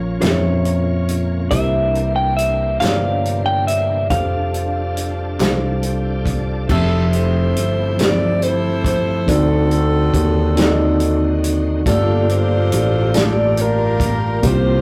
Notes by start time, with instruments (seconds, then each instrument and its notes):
Already playing: fingered electric bass A#1, tine electric piano A#2 C#4 F4 A#4 F5 C6, tonewheel organ A#3 C#4 F4 C#5, clean electric guitar C#5
0.20 fingered electric bass F2, tine electric piano C#4 F4 A#4 E5 C6, clean electric guitar C#5, snare, clap, closed hi-hat
0.65 closed hi-hat
1.09 closed hi-hat
1.50 fingered electric bass C2, tine electric piano C3 D4 G4 A#4 C5 E5, tonewheel organ E3 A#3 D4 C5, clean electric guitar E5, kick, closed hi-hat
1.95 closed hi-hat
2.16 clean electric guitar G5
2.37 clean electric guitar E5, closed hi-hat
2.80 fingered electric bass G1, tine electric piano D4 G4 A#4 C5 C#5, clean electric guitar F5, snare, clap, closed hi-hat
2.89 tine electric piano D5
3.25 closed hi-hat
3.46 clean electric guitar G5
3.67 clean electric guitar E5, closed hi-hat
4.10 fingered electric bass F1, tonewheel organ G3 D4 F4 G4, tine electric piano D4 G4 A4 C5 F5, clean electric guitar F5, kick, closed hi-hat
4.17 tonewheel organ A4
4.54 closed hi-hat
4.97 closed hi-hat
5.39 fingered electric bass C2, tine electric piano D4 G4 A4 C5 F5, snare, clap, closed hi-hat
5.82 tonewheel organ G5, closed hi-hat
6.25 tonewheel organ D5, kick, closed hi-hat
6.67 fingered electric bass F1, tonewheel organ F3 A3 E4 G4, tine electric piano F3 C4 G4, saxophone section E4 A4, kick, crash
6.71 saxophone section C4, tine electric piano A4 E5
7.13 saxophone section E4 A4 C5, closed hi-hat
7.56 fingered electric bass G1, closed hi-hat
7.97 tine electric piano F3 C4 G4 A4 C5, saxophone section D5, snare, closed hi-hat
8.42 saxophone section E4 A4 C5, closed hi-hat
8.84 kick, closed hi-hat
9.26 fingered electric bass D2, tonewheel organ D3 C4 D#4, tine electric piano D3 C4 D#4 F#4 A4 D5, saxophone section C4 F#4 A4, kick, closed hi-hat
9.34 tonewheel organ F#4
9.71 closed hi-hat
10.14 fingered electric bass D#2, kick, closed hi-hat
10.56 tine electric piano C4 D#4 F#4 A4 D5, snare, closed hi-hat
10.64 tine electric piano D#5
11.00 closed hi-hat
11.44 closed hi-hat
11.85 fingered electric bass G1, tine electric piano G2 A3 F4 G4 A4 D5, tonewheel organ G3 A#3 F4 G#4, saxophone section D4 F4 A4, kick, closed hi-hat
11.92 tine electric piano A#3, tonewheel organ G4
12.29 saxophone section F4 A4 C5, closed hi-hat
12.72 fingered electric bass A1, closed hi-hat
13.13 tine electric piano A3 F4 G4 D5 A5, saxophone section D5, snare, closed hi-hat
13.20 tine electric piano A#3
13.57 saxophone section D4 F4 A#4, closed hi-hat
14.00 kick, closed hi-hat
14.42 fingered electric bass C2, tine electric piano C3 A#3 C4 E4 G4 C5, tonewheel organ G3 C4 F4 A#4, saxophone section F4 G4 C5, kick, closed hi-hat
14.50 tine electric piano F4